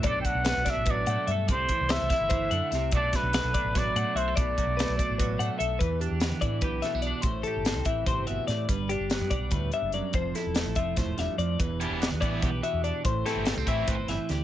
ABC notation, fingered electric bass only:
X:1
M:7/8
L:1/16
Q:1/4=146
K:Em
V:1 name="Fingered electric bass" clef=bass
B,,,2 z B,,,2 B,,, z A,,,3 A,, z G,,2 | C,,2 z C,,2 C,, z G,,,3 F,, z C,,2 | B,,,2 z B,,,2 B,,, z A,,,3 A,, z B,,,2 | B,,,2 z B,,,2 B,,, z A,,,3 A,, z B,,,2 |
E,,3 E,,2 E, A,,2 B,,,2 z B,,,2 z | A,,,2 z G,,,2 C,, A,,,2 A,,, G,,, G,,, z A,,2 | G,,,3 G,,,2 G,, B,,,2 D,,2 z F,,,2 z | =F,,,2 z E,,,2 A,,, F,,,2 F,,, E,,, E,,, z =F,,2 |
E,,,3 E,,,2 E,, A,,,2 B,,,2 z E,,2 z | A,,,2 z G,,,2 C,, A,,,2 A,,, G,,, G,,, z D,,2 |]